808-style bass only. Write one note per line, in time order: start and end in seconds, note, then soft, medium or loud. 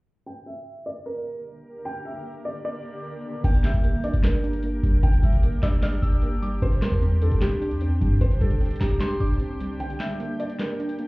3.44 3.73 G1 loud
3.74 3.93 G1 loud
4.14 4.80 G1 loud
4.83 5.02 G1 loud
5.03 5.22 G1 loud
5.23 5.44 G1 loud
5.43 5.62 A1 loud
5.63 6.01 G1 loud
6.02 6.60 G1 loud
6.62 6.91 C2 loud
6.92 7.30 E2 loud
7.32 7.73 C2 loud
7.71 8.00 E2 loud
8.01 8.20 G2 loud
8.21 8.40 C2 loud
8.41 8.79 C2 loud
8.81 9.19 C2 loud
9.20 9.78 C2 loud